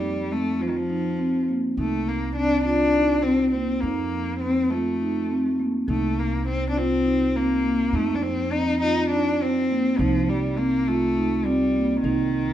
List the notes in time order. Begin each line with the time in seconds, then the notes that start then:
Already playing: F2 G3 D#4
0.31 A3 C4
0.59 F3 F4
0.69 D#3
0.77 F3
0.90 D#4
1.19 C4
1.48 A#3
1.77 C2 A3 D#4
2.08 A#3
2.36 C4 D4
2.65 D4 F4
2.95 D#4
3.22 C4
3.52 A#3 C4
3.81 F2 A#3 D#4
4.40 C4
4.70 A3 F4
5.01 D#4
5.30 C4
5.60 A#3
5.88 C2 A3 D#4
6.20 A#3
6.48 C4
6.70 D4
6.76 C4 F4
7.06 D#4
7.36 A#3 C4
7.65 A#3
7.93 F2 A3 D#4
8.15 D4
8.23 C4
8.52 C4 D#4
8.82 D#4 F4
9.11 D4 D#4
9.41 C4
9.71 A#3
9.99 C2 F3 D#4
10.29 G3
10.58 A#3 C4
10.88 A3 F4
11.17 D#4
11.46 G3 C4
11.76 A#3
12.04 C2 D#3 D#4